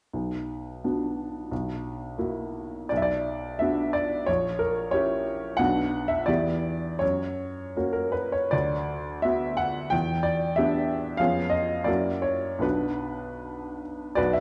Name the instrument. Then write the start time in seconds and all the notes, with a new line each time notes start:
upright piano
0.13 B1
0.84 B3 D4 F#4
1.51 B1
2.18 A#3 E4 F#4
2.89 B1 D5
2.97 E5
3.02 D5
3.59 B3 D4 F#4 E5
3.93 D5
4.26 A#1 C#5
4.59 A#4
4.91 C#4 E4 G4 C#5
5.57 B1 B3 D4 F#4 F#5
6.08 E5
6.26 E2 B3 E4 G4 D5
6.99 F#2 C#5
7.77 A#3 C#4 F#4
7.93 A#4
8.12 B4
8.32 C#5
8.51 D2 D5
9.22 B3 F#4 E5
9.57 F#5
9.90 E2 G5
10.23 D5
10.56 B3 D4 G4 E5
11.17 F2 B3 C#4 G#4 F5
11.50 D#5
11.84 F#2 A#3 E4 F#4 D5
12.22 C#5
12.59 B1 B3 D4 F#4 B4
14.15 B1 F#4 B4 D5
14.33 E5